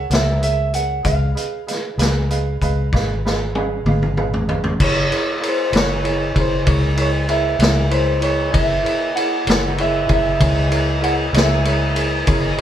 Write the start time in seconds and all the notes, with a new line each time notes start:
Already playing: F#5
0.09 C#2 G#4 A#4 C#5 E5, snare, closed hi-hat
0.14 E5
0.40 G#4 A#4 C#5 E5, closed hi-hat
0.73 G#4 A#4 C#5 E5 F#5, closed hi-hat
1.03 C#2 G#4 B4 D#5 F5, kick, closed hi-hat
1.35 G#4 B4 D#5 F5, closed hi-hat
1.67 G#4 B4 D#5 F5, closed hi-hat
1.71 snare
1.98 C#2 G#4 B4 D#5 F5, snare, closed hi-hat
2.30 G#4 B4 D#5 F5, closed hi-hat
2.61 C#2 G#4 B4 D#5 F5, kick, closed hi-hat
2.92 G#1 G#4 B4 D#5 F5, kick, snare
3.25 G#4 B4 D#5 F5, snare
3.55 G#4 B4 D#5 F5, high tom
3.85 G#1 G#4 B4 D#5 F5, mid tom
4.03 mid tom
4.17 G#4 B4 D#5 F5, mid tom
4.34 floor tom
4.47 G#4 B4 D#5 F5, floor tom
4.64 floor tom
4.79 F#1 A#3 E4 G#4 A#4 C#5, kick, crash
4.84 C#5
5.09 E4 G#4 A#4 C#5, ride
5.40 E4 G#4 A#4 C#5, ride
5.49 C5
5.71 F#1 E4 G#4 A#4 C#5, ride
5.76 C#5, snare
6.03 E4 G#4 A#4 C#5, ride
6.34 F#1 E4 G#4 A#4 C#5, kick, ride
6.40 C5
6.65 C#2 E4 G#4 A#4 C#5, kick, ride
6.70 C#5
6.96 E4 G#4 A#4 C#5, ride
7.01 C#5
7.28 E4 G#4 A#4 C#5 E5, ride
7.59 C#2 E4 G#4 A#4 C#5, snare, ride
7.90 E4 G#4 A#4 C5 C#5, ride
8.20 E4 G#4 A#4 C#5, ride
8.50 F#1 E4 G#4 A#4 C#5 E5, kick, ride
8.82 E4 G#4 A#4 C#5, ride
9.15 E4 G#4 A#4 C#5 F#5, ride
9.46 F#1 E4 G#4 A#4 C#5, snare, ride
9.78 E4 G#4 A#4 C#5 E5, ride
10.07 F#1 E4 G#4 A#4 C#5, kick, ride
10.13 E5
10.39 C#2 E4 G#4 A#4 C#5, kick, ride
10.70 E4 G#4 A#4 C#5, ride
11.01 E4 G#4 A#4 C#5 F#5, ride
11.32 C#2 E4 G#4 A#4 C#5 E5, ride
11.37 snare
11.64 E4 G#4 A#4 C#5, ride
11.95 E4 G#4 A#4 C#5, ride
12.13 D#5
12.26 F#1 E4 G#4 A#4 C#5, kick, ride
12.57 E4 G#4